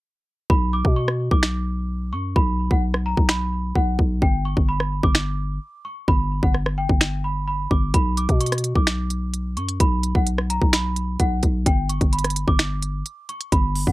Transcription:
0.50 808-style bass B1, celesta B5, kick
0.73 celesta D6
0.85 808-style bass B2, kick
0.96 celesta C#6
1.08 cross-stick
1.31 808-style bass B1, celesta D6, kick
1.43 finger snap, snare
2.13 808-style bass F#2, celesta C#6
2.36 808-style bass B1, celesta B5, kick
2.71 808-style bass B1, celesta F#5, kick
2.94 cross-stick
3.06 celesta A#5
3.17 808-style bass B1, kick
3.29 celesta B5, finger snap, snare
3.75 808-style bass B1, celesta F#5, kick
3.99 808-style bass B1, kick
4.22 808-style bass G1, celesta G5, kick
4.45 celesta C#6
4.57 808-style bass G1, kick
4.69 celesta B5
4.80 cross-stick
5.03 808-style bass G1, celesta D6, kick
5.15 finger snap, snare
5.85 celesta C#6
6.08 808-style bass G1, celesta B5, kick
6.43 808-style bass G1, celesta F#5, kick
6.54 cross-stick
6.66 cross-stick
6.78 celesta G5
6.89 808-style bass G1, kick
7.01 finger snap, snare
7.24 celesta B5
7.48 celesta B5
7.71 808-style bass G1, celesta D6, kick
7.94 808-style bass B1, celesta B5, kick, closed hi-hat
8.17 celesta D6, closed hi-hat
8.29 808-style bass B2, kick, closed hi-hat
8.41 celesta C#6, closed hi-hat
8.46 closed hi-hat
8.52 cross-stick, closed hi-hat
8.58 closed hi-hat
8.64 closed hi-hat
8.75 808-style bass B1, celesta D6, kick
8.87 finger snap, snare, closed hi-hat
9.10 closed hi-hat
9.34 closed hi-hat
9.57 808-style bass F#2, celesta C#6, closed hi-hat
9.69 closed hi-hat
9.80 808-style bass B1, celesta B5, kick, closed hi-hat
10.03 closed hi-hat
10.15 808-style bass B1, celesta F#5, kick
10.27 closed hi-hat
10.38 cross-stick
10.50 celesta A#5, closed hi-hat
10.62 808-style bass B1, kick
10.73 celesta B5, finger snap, snare, closed hi-hat
10.96 closed hi-hat
11.20 808-style bass B1, celesta F#5, kick, closed hi-hat
11.43 808-style bass B1, kick, closed hi-hat
11.66 808-style bass G1, celesta G5, kick, closed hi-hat
11.89 celesta C#6, closed hi-hat
12.01 808-style bass G1, kick, closed hi-hat
12.13 celesta B5, closed hi-hat
12.19 closed hi-hat
12.24 cross-stick, closed hi-hat
12.30 closed hi-hat
12.36 closed hi-hat
12.48 808-style bass G1, celesta D6, kick
12.59 finger snap, snare, closed hi-hat
12.82 closed hi-hat
13.06 closed hi-hat
13.29 celesta C#6, closed hi-hat
13.41 closed hi-hat
13.52 808-style bass G1, celesta B5, kick, closed hi-hat
13.75 open hi-hat
13.87 808-style bass G1, celesta F#5, kick

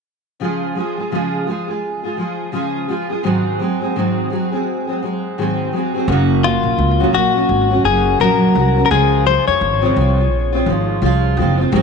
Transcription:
0.40 steel-string acoustic guitar C#3 F3 G#3 F4 G#4
0.75 steel-string acoustic guitar F3 G#3 F4 G#4
0.97 steel-string acoustic guitar G#3 F4 G#4
1.11 steel-string acoustic guitar C#3 F3 G#3 F4 G#4
1.47 steel-string acoustic guitar F3 G#3 F4 G#4
1.68 steel-string acoustic guitar G#3 F4 G#4
2.03 steel-string acoustic guitar G#3 F4 G#4
2.17 steel-string acoustic guitar F3 G#3 F4 G#4
2.52 steel-string acoustic guitar C#3 F3 G#3 F4 G#4
2.88 steel-string acoustic guitar F3 G#3 F4 G#4
3.10 steel-string acoustic guitar G#3 F4 G#4
3.23 steel-string acoustic guitar G#2 D#3 F#3 G#3 C4 G#4
3.59 steel-string acoustic guitar F#3 G#3 C4 G#4
3.81 steel-string acoustic guitar F#3 G#3 C4 G#4
3.95 steel-string acoustic guitar G#2 D#3 F#3 G#3 C4 G#4
4.30 steel-string acoustic guitar F#3 G#3 C4 G#4
4.52 steel-string acoustic guitar F#3 G#3 C4 G#4
4.87 steel-string acoustic guitar F#3 G#3 C4 G#4
5.02 steel-string acoustic guitar F#3 G#3 C4 G#4
5.38 steel-string acoustic guitar G#2 D#3 F#3 G#3 C4 G#4
5.73 steel-string acoustic guitar F#3 G#3 C4 G#4
5.94 steel-string acoustic guitar F#3 G#3 C4 G#4
6.08 upright bass F#1, steel-string acoustic guitar F#2 C#3 F#3 A#3 C#4 F#4
6.44 steel-string acoustic guitar F#3 A#3 C#4, clean electric guitar F4
6.63 upright bass A#1
6.78 upright bass C#2
7.00 steel-string acoustic guitar F#2 C#3 F#3 A#3 C#4 F#4
7.13 upright bass A#1, steel-string acoustic guitar F#3 A#3 C#4 F#4, clean electric guitar F#4
7.34 steel-string acoustic guitar F#3 A#3 C#4 F#4
7.49 upright bass G#1
7.70 steel-string acoustic guitar F#3 A#3 C#4 F#4
7.84 upright bass F#1, steel-string acoustic guitar F#3 A#3 C#4 F#4, clean electric guitar G#4
8.20 upright bass A#1, steel-string acoustic guitar F#2 C#3 F#3 A#3 C#4 F#4, clean electric guitar A#4
8.55 upright bass C2, steel-string acoustic guitar F#3 A#3 C#4 F#4
8.76 steel-string acoustic guitar F#3 A#3 C#4 F#4
8.86 clean electric guitar A#4
8.90 upright bass C#2, steel-string acoustic guitar C#3 F3 G#3 C4 F4, clean electric guitar G#4
9.25 steel-string acoustic guitar F3 G#3 F4, clean electric guitar C5
9.47 upright bass F2, clean electric guitar C#5
9.61 upright bass G#1
9.82 steel-string acoustic guitar C#3 F3 G#3 C4 F4
9.96 upright bass C2, steel-string acoustic guitar F3 G#3 C4 F4
10.17 steel-string acoustic guitar G#3 F4
10.31 upright bass A#1
10.52 steel-string acoustic guitar G#3 C4 F4
10.66 upright bass G#1, steel-string acoustic guitar F3 G#3 F4
11.02 upright bass C2, steel-string acoustic guitar F3 G#3 F4
11.37 upright bass F#1, steel-string acoustic guitar F3 G#3 C4 F4
11.58 steel-string acoustic guitar G#3 C4 F4
11.72 upright bass G#1, steel-string acoustic guitar G#2 D#3 F#3 G#3 C4 G#4

